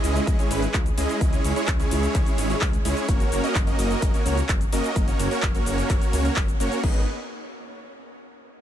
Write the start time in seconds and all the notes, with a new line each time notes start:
Already playing: G#3 C#4 E4 G#4 D#5
0.04 C#2, open hi-hat, shaker
0.16 closed hi-hat, shaker
0.27 C#2, kick, closed hi-hat, shaker
0.39 G#3 C#4 E4 G#4 C#5, closed hi-hat, shaker
0.51 G#1 G#3 C#4 E4 G#4 B4, open hi-hat, shaker
0.62 closed hi-hat, shaker
0.74 C#2, kick, clap, closed hi-hat, shaker
0.86 closed hi-hat, shaker
0.98 C#2 G#3 C#4 E4 G#4 D#5, open hi-hat, shaker
1.09 closed hi-hat, shaker
1.21 C#2, kick, closed hi-hat, shaker
1.33 G#3 C#4 E4 G#4 C#5, closed hi-hat, shaker
1.44 C#2, open hi-hat, shaker
1.56 G#3 C#4 E4 G#4 C#5, closed hi-hat, shaker
1.68 C#2, kick, clap, closed hi-hat, shaker
1.80 G#3 C#4 E4 G#4 C#5, closed hi-hat, shaker
1.91 C#2, open hi-hat, shaker
2.03 closed hi-hat, shaker
2.14 C#2, kick, clap, closed hi-hat, shaker
2.26 closed hi-hat, shaker
2.38 G#1, open hi-hat, shaker
2.50 G#3 C#4 E4 G#4 C#5, closed hi-hat, shaker
2.61 C#2, kick, clap, open hi-hat, shaker
2.73 closed hi-hat, shaker
2.85 C#2 G#3 C#4 E4 G#4 C#5, open hi-hat, shaker
2.97 closed hi-hat, shaker
3.08 F#1 A#3 C#4 F#4 A#4 C#5, kick, closed hi-hat, shaker
3.20 closed hi-hat, shaker
3.32 F#1, open hi-hat, shaker
3.44 A#3 C#4 F#4 A#4 D#5, closed hi-hat, shaker
3.55 F#1, kick, clap, closed hi-hat, shaker
3.67 A#3 C#4 F#4 A#4 D#5, closed hi-hat, shaker
3.79 F#1, open hi-hat, shaker
3.91 closed hi-hat, shaker
4.02 F#1, kick, closed hi-hat, shaker
4.14 A#3 C#4 F#4 A#4 C#5, closed hi-hat, shaker
4.26 C#2 A#3 C#4 F#4 A#4 C#5, open hi-hat, shaker
4.37 closed hi-hat, shaker
4.49 F#1, kick, clap, closed hi-hat, shaker
4.61 closed hi-hat, shaker
4.73 F#1 A#3 C#4 F#4 A#4 D#5, open hi-hat, shaker
4.84 closed hi-hat, shaker
4.96 F#1, kick, closed hi-hat, shaker
5.08 A#3 C#4 F#4 A#4 C#5, closed hi-hat, shaker
5.19 F#1, open hi-hat, shaker
5.31 A#3 C#4 F#4 A#4 C#5, closed hi-hat, shaker
5.43 F#1, kick, clap, closed hi-hat, shaker
5.55 A#3 C#4 F#4 A#4 C#5, closed hi-hat, shaker
5.66 F#1, open hi-hat, shaker
5.78 closed hi-hat, shaker
5.89 F#1, kick, clap, closed hi-hat, shaker
6.02 closed hi-hat, shaker
6.13 C#2, open hi-hat, shaker
6.25 A#3 C#4 F#4 A#4 C#5, closed hi-hat, shaker
6.36 F#1, kick, clap, open hi-hat, shaker
6.48 closed hi-hat, shaker
6.60 F#1 A#3 C#4 F#4 A#4 C#5, open hi-hat, shaker
6.72 closed hi-hat, shaker
6.83 G#1 B3 D#4 G#4 B4 D#5, kick, crash